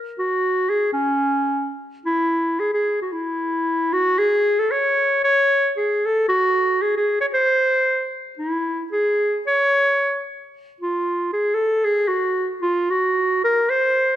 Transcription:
0.19 0.71 F#4 medium
0.69 0.92 G#4 medium
0.93 1.75 C#4 medium
2.06 2.61 E4 medium
2.60 2.73 G#4 medium
2.73 2.98 G#4 medium
3.02 3.14 F#4 medium
3.13 3.95 E4 medium
3.93 4.20 F#4 loud
4.19 4.61 G#4 loud
4.59 4.73 A4 medium
4.71 5.23 C#5 medium
5.24 5.72 C#5 loud
5.77 6.07 G#4 medium
6.06 6.28 A4 medium
6.29 6.83 F#4 medium
6.82 6.96 G#4 medium
6.97 7.21 G#4 medium
7.21 7.27 C#5 medium
7.34 8.11 C5 loud
8.38 8.87 E4 medium
8.92 9.41 G#4 medium
9.47 10.24 C#5 loud
10.81 11.30 F4 medium
11.33 11.56 G#4 medium
11.54 11.86 A4 medium
11.85 12.09 G#4 medium
12.08 12.49 F#4 medium
12.62 12.92 F4 medium
12.90 13.43 F#4 medium
13.44 13.71 A#4 medium
13.70 14.16 C5 medium

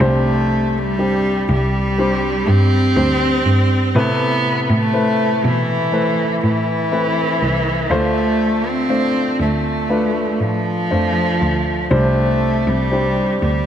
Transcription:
0.00 1.45 C2 medium
0.00 1.45 C3 medium
0.00 0.98 G3 medium
0.00 0.79 A3 medium
0.00 0.99 C4 medium
0.00 0.99 D4 medium
0.00 3.97 A4 medium
0.00 1.99 C5 medium
0.78 1.50 G3 medium
0.98 1.93 G3 soft
0.98 1.93 C4 soft
0.98 1.93 D4 soft
0.98 1.93 G4 medium
1.49 2.43 C2 medium
1.49 2.51 G3 medium
1.98 2.92 G3 medium
1.98 2.92 C4 soft
1.98 2.92 D4 soft
1.98 2.92 C5 medium
2.48 2.93 G2 medium
2.48 4.00 C4 loud
2.96 3.42 D2 medium
2.96 3.90 G3 medium
2.96 3.90 C4 medium
2.96 3.90 D4 medium
2.96 3.90 C5 medium
3.46 3.92 G2 medium
3.95 4.65 A2 medium
3.95 5.40 A2 medium
3.95 4.89 C3 medium
3.95 4.89 A3 medium
3.95 4.65 B3 medium
3.95 4.89 E4 medium
3.95 4.89 B4 medium
4.65 4.75 B3 medium
4.69 5.15 A2 medium
4.69 5.49 A3 medium
4.93 5.88 A3 medium
4.93 5.88 E4 soft
4.93 5.88 B4 medium
4.93 5.88 C5 medium
5.44 6.39 B2 medium
5.44 6.44 E3 medium
5.92 6.86 A3 medium
5.92 6.87 E4 soft
5.92 6.87 B4 medium
5.92 6.87 C5 medium
6.43 7.37 A2 medium
6.43 7.95 E3 medium
6.91 7.85 A3 soft
6.91 7.86 C4 medium
6.91 7.86 E4 soft
6.91 7.86 B4 medium
7.42 7.87 C2 medium
7.90 9.36 D2 medium
7.90 9.36 D3 medium
7.90 8.84 A3 medium
7.90 8.69 A3 medium
7.90 8.85 D4 medium
7.90 8.85 F4 medium
7.90 8.85 C5 medium
8.68 9.41 C4 medium
8.89 9.85 A3 medium
8.89 9.85 D4 soft
8.89 9.85 F4 soft
8.89 9.85 C5 medium
9.40 10.36 D2 medium
9.40 10.44 A3 medium
9.89 10.85 A3 soft
9.89 10.86 D4 medium
9.89 10.86 F4 soft
9.89 10.86 B4 medium
10.40 10.87 A2 medium
10.40 11.93 F3 medium
10.91 11.38 F2 medium
10.91 11.87 A3 medium
10.91 11.87 D4 soft
10.91 11.87 F4 soft
10.91 11.87 C5 medium
11.41 11.88 D2 medium
11.91 12.63 C2 medium
11.91 13.38 C3 soft
11.91 12.86 G3 medium
11.91 12.71 A3 medium
11.91 12.86 C4 medium
11.91 12.87 D4 medium
11.91 12.87 C5 medium
12.67 13.13 C2 medium
12.67 13.43 G3 medium
12.91 13.66 G3 medium
12.91 13.66 C4 soft
12.91 13.66 D4 soft
12.91 13.66 C5 medium
13.42 13.66 D2 medium
13.42 13.66 G3 medium

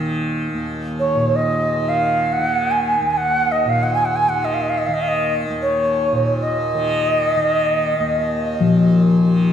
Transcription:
0.00 0.53 D#2 medium
0.00 1.15 A#2 soft
0.00 1.76 D#3 medium
0.00 5.42 D#3 soft
0.54 3.01 D#2 medium
1.00 1.37 C#5 medium
1.15 3.65 A#2 medium
1.36 1.90 D#5 medium
1.76 2.39 D#3 soft
1.89 2.34 F5 medium
2.33 2.73 F#5 medium
2.39 4.28 D#3 soft
2.71 3.10 G#5 medium
3.01 5.50 D#2 medium
3.10 3.19 G#5 medium
3.17 3.53 F#5 medium
3.52 3.71 D#5 medium
3.66 6.12 A#2 soft
3.66 3.85 F5 medium
3.83 3.94 F#5 medium
3.94 4.07 G#5 medium
4.05 4.17 F#5 medium
4.16 4.31 G#5 medium
4.28 4.88 D#3 medium
4.28 4.46 F#5 medium
4.45 4.55 D#5 medium
4.54 4.64 F5 medium
4.62 4.71 D#5 medium
4.69 4.80 F5 medium
4.78 4.88 D#5 medium
4.87 6.75 D#3 medium
4.87 4.95 F5 medium
4.94 5.03 D#5 medium
5.02 5.10 F5 medium
5.08 5.33 D#5 medium
5.50 7.99 D#2 medium
5.62 6.38 C#5 medium
6.12 8.59 A#2 medium
6.42 8.99 D#5 medium
6.75 7.37 D#3 medium
7.37 9.24 D#3 soft
8.00 9.53 D#2 medium
8.60 9.53 A#2 soft
8.60 9.53 F3 medium
9.24 9.53 D#3 soft

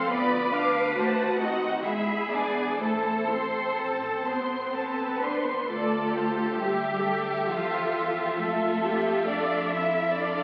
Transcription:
0.00 0.11 C4 soft
0.00 0.11 A4 soft
0.00 0.11 A4 medium
0.00 0.11 C5 medium
0.00 0.11 F5 soft
0.00 0.11 C6 soft
0.10 0.93 D2 medium
0.10 0.49 B3 soft
0.10 0.49 F4 soft
0.10 1.36 B4 medium
0.10 0.50 D5 soft
0.10 0.52 D5 medium
0.10 0.50 B5 soft
0.52 0.95 D4 soft
0.52 0.95 F5 soft
0.52 0.95 D6 soft
0.95 1.85 D#2 soft
0.95 1.36 A3 soft
0.95 1.36 F#4 soft
0.95 1.36 C5 soft
0.95 1.84 F#5 medium
0.95 1.36 A5 soft
1.38 1.85 C4 soft
1.38 1.86 D#4 soft
1.38 1.85 F#4 medium
1.38 1.86 D#5 soft
1.38 1.86 F#5 soft
1.85 2.82 E2 soft
1.85 2.30 G#3 soft
1.85 2.30 E4 soft
1.85 2.82 G#4 medium
1.85 2.33 E5 soft
1.85 2.31 E5 soft
1.85 2.31 B5 soft
2.33 2.82 B3 soft
2.33 2.82 D4 soft
2.33 2.82 D5 soft
2.33 2.82 G#5 soft
2.81 5.48 A1 soft
2.81 3.27 A3 soft
2.81 3.27 E4 soft
2.81 4.23 A4 medium
2.81 3.28 A4 soft
2.81 5.18 C5 soft
2.81 3.28 A5 soft
3.30 3.77 C4 soft
3.30 3.79 A4 soft
3.30 3.79 C5 soft
3.30 3.79 C6 soft
3.78 4.23 C4 soft
3.78 4.27 A4 soft
3.78 4.27 A5 soft
4.26 4.74 B3 soft
4.26 4.71 C4 soft
4.26 4.74 C5 soft
4.26 4.74 C6 soft
4.73 5.69 B3 medium
4.73 5.21 C4 soft
4.73 5.19 A4 soft
4.73 5.70 B4 soft
4.73 5.19 A5 soft
5.21 5.68 D4 soft
5.21 5.69 C5 soft
5.21 5.69 C6 soft
5.68 7.46 D2 soft
5.68 6.58 A3 medium
5.68 6.56 F4 soft
5.68 6.58 A4 medium
5.68 6.11 A4 medium
5.68 6.11 D5 soft
6.15 8.39 G4 medium
6.15 6.60 C5 soft
6.59 7.47 G3 medium
6.59 7.04 G4 soft
6.59 7.50 G4 medium
6.59 10.12 E5 soft
7.04 7.48 A4 soft
7.49 8.38 E2 soft
7.49 8.37 F3 medium
7.49 8.38 F4 medium
7.49 8.37 A4 soft
8.37 10.43 F2 medium
8.37 9.27 A3 medium
8.37 8.83 F4 soft
8.37 10.16 F4 medium
8.37 9.25 A4 medium
8.83 9.27 G4 soft
9.27 9.72 D4 medium
9.27 10.15 A4 soft
9.27 9.72 D5 medium
9.70 10.17 E4 medium
9.70 10.15 E5 medium
10.15 10.43 D4 medium
10.15 10.43 F4 medium
10.15 10.43 A4 soft
10.15 10.43 D5 medium
10.15 10.43 D5 soft

